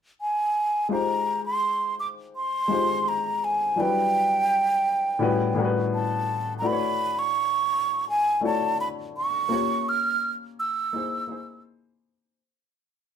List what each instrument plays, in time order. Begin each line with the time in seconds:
0.21 flute G#5
0.89 grand piano G#3 D#4 F4 G4 C5
0.93 flute A#5
1.46 flute C6
2.00 flute D6
2.36 flute C6
2.68 grand piano G#3 D#4 F4 G4
2.72 grand piano C5
3.08 flute A#5
3.44 flute G#5
3.76 grand piano F#3 D4 E4 B4
3.80 grand piano G3, flute G5
5.19 grand piano A2 G3 C#4 E4 F#4 B4
5.54 grand piano A2 G3 C#4 E4 F#4 A#4
5.65 grand piano B4
5.94 flute A5
6.59 grand piano A3 D4, flute A#5
6.63 grand piano E4 F#4 B4, flute B5
6.72 grand piano C#5
7.19 flute C#6
8.10 flute G#5
8.41 grand piano A3 D4 E4 F#4
8.45 grand piano C#5, flute A5
8.81 flute B5
9.17 flute C#6
9.49 grand piano A#3 C#4 F4 G4 C#5
9.89 flute F6
10.59 flute E6
10.93 grand piano A#3 D#4 E4 G#4 C5
11.27 grand piano A#3 D#4 E4 G#4
11.32 grand piano C5